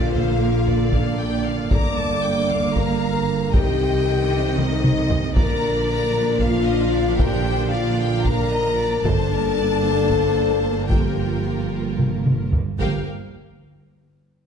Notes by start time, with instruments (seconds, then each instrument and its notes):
Already playing: double bass section A#1, cello section A#2, viola section D3 A#3, trombone section D3 A#3, french horn section F4, violin section D5 F5
0.13 violin section C5, taiko low
0.40 violin section A#4
0.66 violin section D5, taiko low
0.92 french horn section D4, violin section D5 F5, taiko
1.20 violin section G5
1.45 violin section F5
1.71 double bass section G1, cello section G2, viola section D3 A#3, trombone section D3 A#3, french horn section D5, violin section A#5 D6, taiko
1.97 violin section A5, taiko low
2.24 violin section G5
2.49 violin section F5, taiko low
2.75 french horn section A#4, violin section A#5, taiko
3.53 double bass section C2, trombone section C3 C4, cello section C3, viola section D3 D#3, french horn section G4, violin section D#5 G5, taiko
4.58 french horn section D#4, violin section D#5, taiko mid
4.84 taiko mid
5.10 taiko low
5.35 double bass section A#1, cello section A#2, trombone section D3 A#3, viola section F3 D4, french horn section A#4, violin section D5 A#5, taiko
5.88 violin section A#5
5.92 french horn section A#4
6.40 violin section F5, taiko
6.45 french horn section F4
6.67 violin section D#5
6.92 violin section D5
7.18 violin section A#4 G5, taiko
7.24 french horn section G4
7.45 violin section C5
7.70 violin section D5 F5
7.75 french horn section F4
8.00 violin section G5
8.23 violin section F5 A#5, taiko
8.29 french horn section A#4
8.51 violin section D#5
8.79 violin section D5
9.04 double bass section G1, cello section G2, trombone section D3 A#3, viola section A#3 D4, french horn section A4, violin section C5 A5, taiko
9.33 violin section A#4
9.58 violin section D5
9.85 violin section C5
10.10 taiko
10.88 timpani G2, trombone section F3, viola section F4, french horn section G4, violin section A#4 G5, taiko
11.99 taiko mid
12.26 taiko mid
12.53 taiko low
12.78 double bass section G1, timpani G2, cello section G2, trombone section F3 A#3, viola section A#3 A#4, french horn section G4, violin section F5 G5, taiko